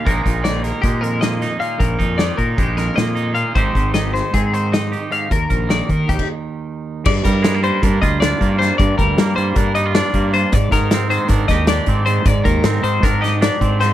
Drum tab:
CC |------------------|------------------|------------------|---------x--------|
HH |x-x-x-x-x-x-x-x-x-|x-x-x-x-x-x-x-x-x-|x-x-x-x-x-x-x-x-x-|x-x-x-x-x---------|
SD |----o-o-----o-o---|----o-----o-o-----|----o-o-----o-----|----o-------------|
BD |o-o-----o---------|o-o---o-o---------|o-o-----o---------|o-o---o-oo--------|

CC |x-----------------|------------------|------------------|------------------|
HH |--x-x-x-x-x-x-x-x-|x-x-x-x-x-x-x-x-x-|x-x-x-x-x-x-x-x-x-|x-x-x-x-x-x-x-x-x-|
SD |--o-o-------o---o-|----o-------o-----|--o-o-----o-o-----|----o---o-o-o---o-|
BD |o-o-----o-o---o---|o-o-----o-----o---|o-o-----o-o---o---|o-o-----o-----o---|